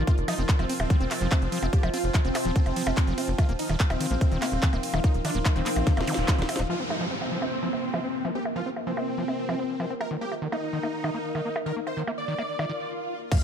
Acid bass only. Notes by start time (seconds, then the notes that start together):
0.07 C4
0.28 F3
0.38 C4
0.59 F3
0.69 C4
0.90 F3
1.00 C4
1.21 F3
1.32 C4
1.52 F3
1.63 C4
1.83 F3
1.94 C4
2.14 F3
2.25 C4
2.45 F3
2.56 C4
2.76 F3
2.87 C4
3.07 F3
3.18 C4
3.38 D#3
3.49 A#3
3.70 D#3
3.80 A#3
4.01 D#3
4.11 A#3
4.32 D#3
4.42 A#3
4.63 D#3
4.73 A#3
4.94 D#3
5.04 A#3
5.25 D#3
5.35 A#3
5.56 D#3
5.66 A#3
5.87 D#3
5.97 A#3
6.07 D#3
6.28 F3
6.38 D#3
6.59 D#4
6.70 F3
6.80 C4
7.01 F3
7.11 C4
7.32 F3
7.42 C4
7.63 F3
7.73 C4
7.94 F3
8.04 C4
8.25 F3
8.35 C4
8.56 F3
8.66 C4
8.87 F3
8.97 C4
9.18 F3
9.28 C4
9.49 F3
9.59 C4
9.80 F3
9.90 C4
10.11 D#3
10.21 A#3
10.42 D#3
10.52 A#3
10.73 D#3
10.83 A#3
11.04 D#3
11.14 A#3
11.35 D#3
11.45 A#3
11.66 D#3
11.76 A#3
11.97 D#3
12.07 A#3
12.28 D#3
12.38 A#3
12.59 D#3
12.70 D#3
13.32 F3